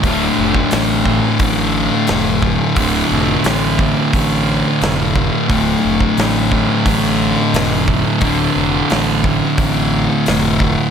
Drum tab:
HH |o---o---o---o---|o---o---o---o---|o---o---o---o---|o---o---o---o---|
SD |----o-------o---|----o-------o---|----o-------o---|----o-------o---|
BD |o--o--o-o-----o-|o-----o-o-----o-|o--o--o-o-----o-|o-----o-o-----o-|